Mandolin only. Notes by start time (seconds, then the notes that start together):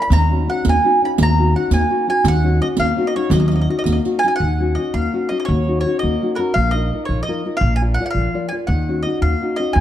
0.02 B5
0.13 A#5
0.50 F#5
0.69 G#5
1.05 B5
1.23 A#5
1.56 F#5
1.73 G#5
2.10 G#5
2.28 F#5
2.62 D#5
2.80 F5
3.07 D#5
3.16 C#5
3.33 D#5
3.40 D#5
3.48 D#5
3.56 D#5
3.61 D#5
3.70 D#5
3.79 D#5
3.92 D#5
4.19 G#5
4.28 G#5
4.36 F#5
4.75 D#5
4.94 F5
5.29 D#5
5.40 D#5
5.45 C#5
5.81 C#5
5.99 D#5
6.35 A#4 B4
6.54 F5
6.71 D#5
7.05 C#5
7.23 D#5
7.57 F5
7.76 G#5
7.94 F#5
8.06 F#5
8.11 F5
8.49 G#5
8.67 F#5
9.03 D#5
9.22 F5
9.56 D#5
9.73 G#5